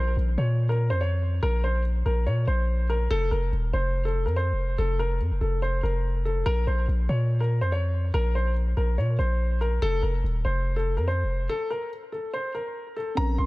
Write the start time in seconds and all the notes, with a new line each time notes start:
Already playing: A#1 C5
0.17 A#1
0.38 A#2 C#5
0.69 A#4
0.90 F2 C5
1.01 C#5
1.43 A#1 A#4
1.64 C5
2.06 A#1 A#4
2.27 A#2 C#5
2.47 A#1 C5
2.90 A#4
3.10 F1 A4
3.31 F1 A#4
3.52 D#1
3.73 F1 C5
4.05 A4
4.26 F2 A#4
4.36 C5
4.52 F1
4.78 F1 A4
4.99 A#4
5.20 F2
5.31 F1
5.41 F1 A4
5.62 C5
5.83 F1 A#4
6.25 A4
6.46 A#1 A#4
6.67 A#1 C5
6.88 A#1
7.09 A#2 C#5
7.40 A#4
7.61 F2 C5
7.72 C#5
8.14 A#1 A#4
8.35 C5
8.77 A#1 A#4
8.98 A#2 C#5
9.19 A#1 C5
9.61 A#4
9.82 F1 A4
10.03 F1 A#4
10.24 D#1
10.45 F1 C5
10.76 A4
10.97 F2 A#4
11.08 C5
11.23 F1
11.49 A4
11.70 A#4
12.12 A4
12.33 C5
12.55 A#4
12.96 A4
13.15 A#1 C4 C#4 A#5
13.20 A#4
13.38 A#1 C6